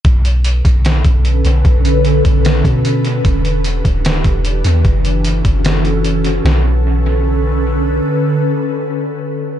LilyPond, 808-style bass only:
\new Staff \with { instrumentName = "808-style bass" } { \clef bass \time 4/4 \key b \minor \tempo 4 = 150 b,,4. b,,4 b,,4 b,,8 | b,,4. b,,4 b,4. | e,,4. d,,4 e,,4 e,8 | fis,,4. fis,,2~ fis,,8 |
b,,1 | r1 | }